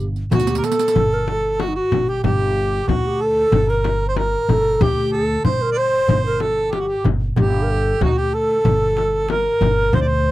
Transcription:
Already playing: G1
0.16 riq, darbuka ka
0.31 D2 F#4, riq, darbuka dum, frame drum
0.40 riq
0.47 G4, riq
0.55 A#4, riq
0.64 A4, riq
0.72 riq
0.79 riq
0.88 riq
0.95 G1, darbuka dum, frame drum
1.12 A#4, darbuka ka
1.28 A4, darbuka tek, frame drum
1.60 F#4, darbuka tek, frame drum
1.68 D#4
1.75 F#4
1.92 G1, darbuka dum, frame drum
2.07 G4, darbuka ka
2.24 G1 G4, darbuka dum, frame drum
2.56 darbuka ka
2.72 darbuka ka
2.84 F#4 G4, darbuka dum
2.88 D2 F#4, frame drum
3.07 G4
3.20 A4, darbuka ka
3.36 darbuka ka
3.52 G1, darbuka dum, frame drum
3.69 A#4, darbuka ka
3.84 darbuka tek, frame drum
4.08 C5
4.17 A#4, darbuka tek, frame drum
4.49 G1 A4, frame drum, darbuka dum
4.66 darbuka ka
4.81 D2 G4, frame drum, darbuka dum
5.12 A4, darbuka ka
5.29 darbuka ka
5.44 G1 C5, darbuka dum, frame drum
5.62 A#4
5.72 D5
5.77 C5, darbuka ka
5.93 darbuka ka
6.08 G1, darbuka dum, frame drum
6.25 A#4, darbuka ka
6.40 A4, darbuka tek, frame drum
6.72 G4, darbuka tek, frame drum
6.80 F#4
6.88 G4
7.04 G1, darbuka dum, frame drum
7.21 darbuka ka
7.36 G1 G4, darbuka dum, frame drum
7.63 A#4
7.69 A4, darbuka ka
7.85 darbuka ka
8.01 D2 F#4, darbuka dum, frame drum
8.05 D#4
8.10 F#4
8.18 G4
8.34 A4
8.49 darbuka ka
8.65 G1, darbuka dum, frame drum
8.81 darbuka ka
8.97 darbuka tek, frame drum
9.13 darbuka ka
9.29 A#4, darbuka tek, frame drum
9.45 darbuka ka
9.61 G1, darbuka dum, frame drum
9.77 darbuka ka
9.93 D2 C5, darbuka dum, frame drum
10.01 D5
10.08 C5

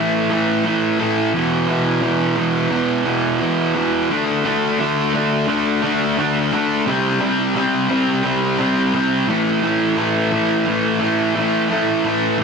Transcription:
Already playing: A2 E3 A3
0.30 A2 E3 A3
0.64 A2 E3 A3
0.98 A2 E3 A3
1.34 E2 B2 E3
1.68 E2 B2 E3
2.02 E2 B2 E3
2.36 E2 B2 E3
2.70 E2 B2 E3
3.05 E2 B2 E3
3.41 E2 B2 E3
3.75 E2 B2 E3
4.10 D3 A3 D4
4.44 D3 A3 D4
4.79 D3 A3 D4
5.14 D3 A3 D4
5.48 D3 A3 D4
5.82 D3 A3 D4
6.17 D3 A3 D4
6.52 D3 A3 D4
6.86 C3 G3 C4
7.20 C3 G3 C4
7.55 C3 G3 C4
7.89 C3 G3 C4
8.23 C3 G3 C4
8.58 C3 G3 C4
8.94 C3 G3 C4
9.28 A2 E3 A3
9.63 A2 E3 A3
9.97 A2 E3 A3
10.32 A2 E3 A3
10.66 A2 E3 A3
11.00 A2 E3 A3
11.36 A2 E3 A3
11.70 A2 E3 A3
12.04 A2 E3 A3
12.38 A2 E3

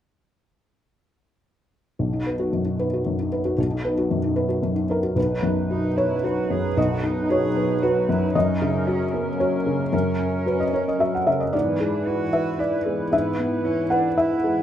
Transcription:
1.99 B1
2.13 D#4
2.27 B4
2.39 F#4
2.53 F#2
2.65 D#4
2.79 B4
2.93 F#4
3.06 F#2
3.19 D#4
3.32 B4
3.45 F#4
3.58 B1
3.71 D#4
3.85 B4
3.98 F#4
4.11 F#2
4.24 D#4
4.36 B4
4.49 F#4
4.63 F#2
4.76 D#4
4.90 A#4 B4
5.03 F#4
5.16 B1 F#3 D#4 B4
5.43 F#2
5.71 D#4 F#4
5.97 E4 B4 C#5
6.24 F#4 B4
6.50 F#2 G#4
6.77 B1 F#4 D#5
7.03 D#4
7.30 F#4 G#4 C#5
7.57 B4
7.82 F#4 B4
8.09 F#2 E4
8.35 F#2 C#4 D#4 A#4 D#5
8.62 C#3
8.87 C#4 F#4
9.13 B3 A#4
9.39 A#3 F#4 C#5
9.66 C#3
9.93 F#2 C#4 A#4
10.19 C#4
10.46 F#4 B4
10.60 D#5
10.73 A#4 C#5
10.88 D#5
10.99 F#4 E5
11.15 F#5
11.26 C#3 E5
11.40 D#5
11.53 G#2 E3 B3 E4 B4 D5
11.80 G#3 D4
12.06 E4 F#4
12.33 B4 E5
12.59 E4 D5
12.85 G#3 B3
13.12 G#2 E5
13.39 B3
13.65 C#4 E4
13.90 D4 B4 F#5
14.17 E4 E5
14.44 G#3

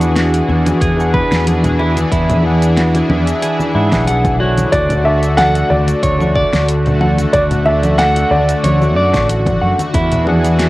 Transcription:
Already playing: E2 E3 D4 F#4 G#4 F#5
0.01 closed hi-hat, muted conga, cabasa
0.16 F#4, snare, closed hi-hat, cabasa
0.34 closed hi-hat, cabasa
0.49 E2, high conga
0.66 closed hi-hat, muted conga, low conga, cabasa
0.81 E2 G#4, kick, closed hi-hat, cabasa
0.97 E3 D4 G#4, cabasa
1.01 F#5
1.14 B4, kick, muted conga
1.31 E2, snare, closed hi-hat, cabasa
1.47 closed hi-hat, low conga, cabasa
1.64 closed hi-hat, low conga, cabasa
1.79 E4, muted conga
1.97 closed hi-hat, high conga, cabasa
2.12 E2 E4, kick, closed hi-hat, cabasa
2.30 closed hi-hat, muted conga, low conga, cabasa
2.43 E3 D4 G#4
2.47 F#5
2.62 closed hi-hat, cabasa
2.77 F#4, snare, closed hi-hat, cabasa
2.94 closed hi-hat, muted conga, cabasa
3.10 E2, high conga, low conga
3.27 closed hi-hat, cabasa
3.42 G#4, closed hi-hat, muted conga, cabasa
3.60 high conga, cabasa
3.74 G#2 E3 D4 E4 G#4 F#5
3.91 B1 E3 D4 G#4 F#5, kick, snare, closed hi-hat, low conga, cabasa
4.08 F#5, closed hi-hat, muted conga, cabasa
4.25 kick, closed hi-hat, high conga, low conga, cabasa
4.39 D3 D4 F#4 C#5
4.58 closed hi-hat, muted conga, high conga, cabasa
4.72 D2 D3 A3 F#4 D5, kick, closed hi-hat, muted conga, cabasa
4.89 closed hi-hat, low conga, cabasa
5.03 D3 D4 F#4 E5
5.07 D5
5.23 closed hi-hat, cabasa
5.37 A4 F#5, snare, closed hi-hat, muted conga, low conga, cabasa
5.55 closed hi-hat, cabasa
5.70 D2 D5, high conga
5.88 closed hi-hat, muted conga, cabasa
6.03 D2 C#5, kick, closed hi-hat, cabasa
6.18 D3 D4 F#4, low conga, cabasa
6.22 C#6
6.36 D5, kick
6.53 D2, snare, closed hi-hat, muted conga, cabasa
6.69 closed hi-hat, cabasa
6.86 closed hi-hat, low conga, cabasa
7.01 F#5, muted conga, low conga
7.18 closed hi-hat, high conga, cabasa
7.33 D2 F#4 D5, kick, closed hi-hat, cabasa
7.51 closed hi-hat, low conga, cabasa
7.64 D3 D4 F#4 E5, muted conga
7.68 D5
7.83 closed hi-hat, low conga, cabasa
7.98 A4 F#5, snare, closed hi-hat, cabasa
8.16 closed hi-hat, muted conga, cabasa
8.31 D2 D5, high conga
8.49 closed hi-hat, cabasa
8.63 D2 C#5, closed hi-hat, low conga, cabasa
8.82 muted conga, high conga, cabasa
8.96 F#2 D5
9.12 A1 D3 D4 F#4, kick, snare, closed hi-hat, cabasa
9.16 C#6
9.29 closed hi-hat, muted conga, cabasa
9.46 kick, closed hi-hat, high conga, low conga, cabasa
9.62 F#2 F#5
9.79 closed hi-hat, high conga, cabasa
9.94 E2 E3 D4 E4 G#4, kick, closed hi-hat, muted conga, cabasa
10.12 closed hi-hat, low conga, cabasa
10.25 E3 D4 G#4, low conga
10.29 F#5
10.45 closed hi-hat, muted conga, cabasa
10.59 F#4, snare, closed hi-hat, cabasa

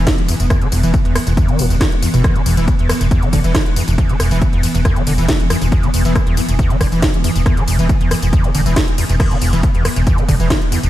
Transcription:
Already playing: E3 B3
0.07 E2, kick, snare, closed hi-hat, tambourine
0.18 E1, closed hi-hat
0.29 E2, open hi-hat, ride, tambourine
0.40 E1 E2, closed hi-hat, tambourine
0.50 E2, kick, cross-stick, closed hi-hat, tambourine
0.62 E3, closed hi-hat
0.72 E1 E2, open hi-hat, ride, tambourine
0.83 E1 E3, closed hi-hat, tambourine
0.94 kick, closed hi-hat, tambourine
1.05 E1 E2, closed hi-hat
1.16 E2, cross-stick, open hi-hat, ride, tambourine
1.27 E1 E2, closed hi-hat, tambourine
1.37 E2, kick, closed hi-hat, tambourine
1.49 E3, closed hi-hat
1.59 E1 A2, open hi-hat, ride, tambourine
1.70 E1 E2, closed hi-hat, tambourine
1.81 E2, kick, cross-stick, snare, closed hi-hat, tambourine
1.92 E1, closed hi-hat
2.02 E2, open hi-hat, ride, tambourine
2.14 E1 B2, closed hi-hat, tambourine
2.24 E2, kick, cross-stick, closed hi-hat, tambourine
2.35 E3, closed hi-hat
2.46 E1 E2, open hi-hat, ride, tambourine
2.57 E1 E3, closed hi-hat, tambourine
2.68 kick, closed hi-hat, tambourine
2.79 E1 E2, closed hi-hat
2.89 E2, cross-stick, open hi-hat, ride, tambourine
3.01 E1 E2, closed hi-hat, tambourine
3.11 E2, kick, closed hi-hat, tambourine
3.22 E3, closed hi-hat
3.33 E1 D3, kick, open hi-hat, ride, tambourine
3.44 E1 E3, closed hi-hat, tambourine
3.55 E2, kick, cross-stick, snare, closed hi-hat, tambourine
3.66 E1, closed hi-hat
3.76 E2, open hi-hat, ride, tambourine
3.88 E1 E2, closed hi-hat, tambourine
3.98 E2, kick, closed hi-hat, tambourine
4.09 E3, closed hi-hat
4.20 E1 E2, cross-stick, open hi-hat, ride, tambourine
4.31 E1 E3, closed hi-hat, tambourine
4.42 kick, closed hi-hat, tambourine
4.53 E1 E2, closed hi-hat
4.63 E2, open hi-hat, ride, tambourine
4.75 E1 E2, closed hi-hat, tambourine
4.85 E2, kick, cross-stick, closed hi-hat, tambourine
4.96 E3, closed hi-hat
5.07 E1 D3, open hi-hat, ride, tambourine
5.18 E1 E3, closed hi-hat, tambourine
5.29 E2, kick, snare, closed hi-hat, tambourine
5.40 E1, closed hi-hat
5.50 E2, cross-stick, open hi-hat, ride, tambourine
5.62 E1 E2, closed hi-hat, tambourine
5.72 E2, kick, closed hi-hat, tambourine
5.83 E3, closed hi-hat
5.94 E1 E2, open hi-hat, ride, tambourine
6.05 E1 E3, closed hi-hat, tambourine
6.15 kick, cross-stick, closed hi-hat, tambourine
6.27 E1 E2, closed hi-hat
6.37 E2, open hi-hat, ride, tambourine
6.49 E1 E2, closed hi-hat, tambourine
6.59 E2, kick, closed hi-hat, tambourine
6.70 E3, closed hi-hat
6.81 E1 D3, kick, cross-stick, open hi-hat, ride, tambourine
6.92 E1 E3, closed hi-hat, tambourine
7.02 E2, kick, snare, closed hi-hat, tambourine
7.14 E1, closed hi-hat
7.24 E2, open hi-hat, ride, tambourine
7.36 E1 E2, closed hi-hat, tambourine
7.46 E2, kick, cross-stick, closed hi-hat, tambourine
7.57 E3, closed hi-hat
7.68 E1 E2, open hi-hat, ride, tambourine
7.79 E1 E3, closed hi-hat, tambourine
7.89 kick, closed hi-hat, tambourine
8.01 E1 E2, closed hi-hat
8.11 E2, cross-stick, open hi-hat, ride, tambourine
8.22 E1 E2, closed hi-hat, tambourine
8.33 E2, kick, closed hi-hat, tambourine
8.44 E3, closed hi-hat
8.55 E1 D3, open hi-hat, ride, tambourine
8.66 E1 E3, closed hi-hat, tambourine
8.76 E2, kick, cross-stick, snare, closed hi-hat, tambourine
8.88 E1, closed hi-hat
8.98 E2, open hi-hat, ride, tambourine
9.09 E1 E2, closed hi-hat, tambourine
9.20 E2 E3 B3, kick, cross-stick, closed hi-hat, crash, tambourine
9.31 E3, closed hi-hat
9.42 E1 E2, open hi-hat, ride, tambourine
9.53 E1 E3, closed hi-hat, tambourine
9.63 kick, closed hi-hat, tambourine
9.75 E1 E2, closed hi-hat
9.85 E2, cross-stick, open hi-hat, ride, tambourine
9.96 E1 E2, closed hi-hat, tambourine
10.07 E2, kick, closed hi-hat, tambourine
10.18 E3, closed hi-hat
10.29 E1 D3, kick, open hi-hat, ride, tambourine
10.40 E1 E3, closed hi-hat, tambourine
10.50 E2, kick, cross-stick, snare, closed hi-hat, tambourine
10.62 E1, closed hi-hat
10.72 E2, open hi-hat, ride, tambourine
10.83 E1 E2, closed hi-hat, tambourine

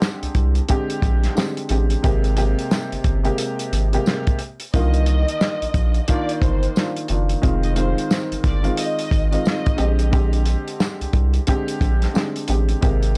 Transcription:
Already playing: D3 G#3 C4 G4
0.02 snare, tambourine
0.23 C2, closed hi-hat
0.35 C2, kick, closed hi-hat
0.55 closed hi-hat
0.68 D3 G#3 C4 G4, kick, closed hi-hat
0.90 closed hi-hat
1.02 A#1, kick, closed hi-hat
1.24 snare, closed hi-hat
1.35 D3 G#3 C4 G4, snare, tambourine
1.57 closed hi-hat
1.69 A1 D3 G#3 C4 G4, closed hi-hat
1.90 closed hi-hat
2.03 G#1 C3 G#3 A#3 G4, kick, closed hi-hat
2.24 closed hi-hat
2.36 C3 G#3 A#3 G4, closed hi-hat
2.59 closed hi-hat
2.71 snare, tambourine
2.92 G1, closed hi-hat
3.04 G1, kick, closed hi-hat
3.23 C3 G#3 A#3 G4, closed hi-hat
3.38 closed hi-hat
3.59 closed hi-hat
3.72 G#1, closed hi-hat
3.93 C3 G#3 A#3 G4, closed hi-hat
4.06 snare, tambourine
4.27 kick, closed hi-hat
4.39 closed hi-hat
4.60 closed hi-hat
4.73 C2 D3 D#3 A#3 F4 D#5, kick, closed hi-hat
4.94 closed hi-hat
5.06 closed hi-hat
5.28 closed hi-hat
5.41 snare, tambourine
5.62 A#1, closed hi-hat
5.74 A#1, kick, closed hi-hat
5.94 closed hi-hat
6.08 D#3 A#3 D4 F4 D5, kick, closed hi-hat
6.29 closed hi-hat
6.42 G1 C5, kick, closed hi-hat
6.63 closed hi-hat
6.76 D#3 A#3 D4 F4, snare, tambourine
6.96 closed hi-hat
7.08 F#1 D#3 A#3 D4 F4, closed hi-hat
7.29 closed hi-hat
7.42 F1 D#3 G#3 C4 F4, kick, closed hi-hat
7.63 D#5, closed hi-hat
7.76 D#3 G#3 C4 F4 C5, closed hi-hat
7.98 closed hi-hat
8.10 snare, tambourine
8.32 G1, closed hi-hat
8.44 G1 D5, kick, snare, closed hi-hat
8.63 D#3 G#3 C4 F4, closed hi-hat
8.77 D#5, closed hi-hat
8.99 closed hi-hat
9.11 G#1, kick, closed hi-hat
9.32 D#3 G#3 C4 F4 D#5, closed hi-hat
9.45 snare, tambourine
9.66 kick, closed hi-hat
9.77 A#1 D3 G#3 C4 G4, closed hi-hat
9.99 closed hi-hat
10.11 D3 G#3 C4 G4, kick, closed hi-hat
10.33 closed hi-hat
10.46 closed hi-hat
10.68 closed hi-hat
10.80 snare, tambourine
11.01 C2, closed hi-hat
11.13 C2, kick, closed hi-hat
11.34 closed hi-hat
11.47 D3 G#3 C4 G4, kick, closed hi-hat
11.68 closed hi-hat
11.81 A#1, kick, closed hi-hat
12.02 snare, closed hi-hat
12.14 D3 G#3 C4 G4, snare, tambourine
12.36 closed hi-hat
12.48 A1 D3 G#3 C4 G4, closed hi-hat
12.69 closed hi-hat
12.81 G#1 C3 G#3 A#3 G4, kick, closed hi-hat
13.03 closed hi-hat

